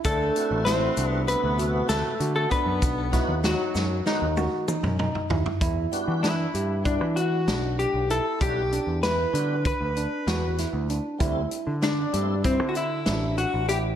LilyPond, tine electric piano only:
\new Staff \with { instrumentName = "Tine electric piano" } { \time 9/8 \key e \minor \tempo 4. = 64 d'4 e'8 d'4 fis'4 fis'8 d'8~ | d'8 e'8 dis'4 dis'8 fis'8 dis'8 dis'8 e'8 | e'4 d'8 g'8 e'4 d'4 e'8~ | e'8 d'8 e'8 d'4 d'8 fis'8 e'8 d'8 |
e'4 d'8 g'8 e'4 d'4 e'8 | }